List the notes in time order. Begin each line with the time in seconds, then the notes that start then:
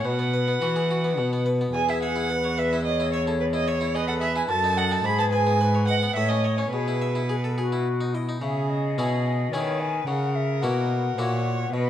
0.04 B2 B4 F#5
0.19 B3
0.34 B4
0.48 B3
0.62 E3 F#4
0.76 G#4
0.91 F#4
1.04 B3
1.18 B2
1.33 B3
1.46 B4
1.61 B3
1.74 E2 G#4 G#5
1.89 E4 E5
2.03 E5 F#5
2.16 E4
2.29 B4
2.44 C#5
2.58 B4 E5
2.73 E4
2.85 C#5 D#5
3.00 E4
3.13 C#5 E5
3.27 E4 A4
3.40 B4
3.53 E4 D#5
3.68 C#5 E5
3.81 E4
3.95 G#4 B4 D#5
4.08 A4 F#5
4.21 G#4 E5
4.36 E4 G#5
4.49 F#2 A4 A5
4.64 D#4
4.77 D#5 F#5
4.91 D#4 A5
5.04 G#2 G#4 B5
5.18 B3 A5
5.32 B4 G#5
5.47 B3
5.61 B4
5.75 C#5
5.87 B4 D#5 F#5
6.03 B3
6.15 A2 C#5 E5
6.29 C#4 D#5
6.44 C#5
6.58 C#4 C#5
6.72 B2 G#4 B4
6.88 E4
7.02 E5
7.15 E4
7.28 G#4
7.44 A4
7.58 F#4 G#4
7.72 E4
8.01 D#4
8.14 E4 D#5
8.29 D#4
8.41 C#3 G#4 E5
8.69 D#5
8.98 B2 C#4 E4 G#4
9.52 D#3 C#4 E4 G#4 B4 C#5
9.80 G#5
10.06 C#3 A#4 F#5
10.35 E5
10.61 B2 A#3 E4 F#4 F#5
11.18 A#2 A#3 E4 F#4 C#5
11.72 B2 B4 D#5